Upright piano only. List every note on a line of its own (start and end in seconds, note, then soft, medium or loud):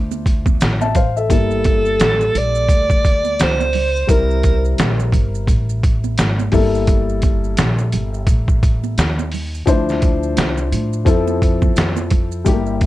0.00 1.26 D4 medium
0.00 1.26 E4 medium
0.00 1.25 F4 medium
0.00 0.57 C5 medium
0.81 0.95 E5 medium
0.81 0.94 A5 medium
0.96 1.15 C5 medium
0.96 1.15 F5 medium
1.17 1.30 A4 medium
1.17 1.49 E5 medium
1.29 4.05 G3 medium
1.29 4.05 A#3 medium
1.29 4.05 E4 medium
1.29 4.06 A4 medium
4.07 6.48 G3 medium
4.07 6.49 C4 medium
4.07 6.49 E4 medium
4.07 6.49 A#4 medium
6.52 9.27 G3 medium
6.52 9.28 A#3 medium
6.52 9.28 E4 medium
6.52 9.29 A4 medium
9.66 11.03 F3 medium
9.66 11.04 D4 medium
9.66 11.04 E4 medium
9.66 11.05 C5 medium
11.05 12.42 F3 medium
11.05 12.43 C4 medium
11.05 12.43 E4 medium
11.05 12.44 A4 medium
12.45 12.86 G3 medium
12.45 12.54 A3 medium
12.45 12.86 E4 medium
12.45 12.86 G4 medium
12.52 12.86 A#3 medium